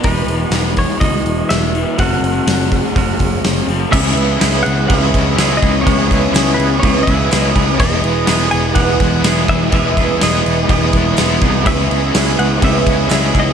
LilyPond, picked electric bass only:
\new Staff \with { instrumentName = "Picked electric bass" } { \clef bass \time 4/4 \key cis \dorian \tempo 4 = 124 e,,8 e,,8 e,,4 cis,8 e,,8 e,,4 | fis,,8 fis,,8 fis,,4 fis,,8 fis,,8 fis,,8 fis,,8 | cis,8 cis,8 cis,8 cis,8 cis,8 cis,8 cis,8 cis,8 | cis,4 cis,8 cis,8 cis,8 cis,8 cis,8 cis,8 |
e,,8 e,,8 e,,8 e,,8 e,,8 e,,8 e,,8 e,,8 | e,,4 e,,8 e,,8 e,,8 e,,8 e,,8 c,8 | cis,8 cis,8 cis,8 cis,8 cis,8 cis,8 cis,8 cis,8 | }